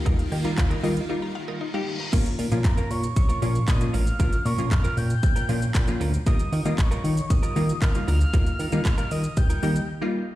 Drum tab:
CC |----------------|x---------------|----------------|----------------|
HH |xxoxxxox--------|xxoxxxoxxxoxxxox|xxoxxxoxxxoxxxox|xxoxxxoxxxoxxxox|
SH |----------------|xxxxxxxxxxxxxxxx|xxxxxxxxxxxxxxxx|xxxxxxxxxxxxxxxx|
CP |----x-----------|----x-------x---|----x-------x---|----x-------x---|
BD |o---o-----------|o---o---o---o---|o---o---o---o---|o---o---o---o---|

CC |----------------|
HH |xxoxxxoxxxox----|
SH |xxxxxxxxxxxx----|
CP |----x-----------|
BD |o---o---o-------|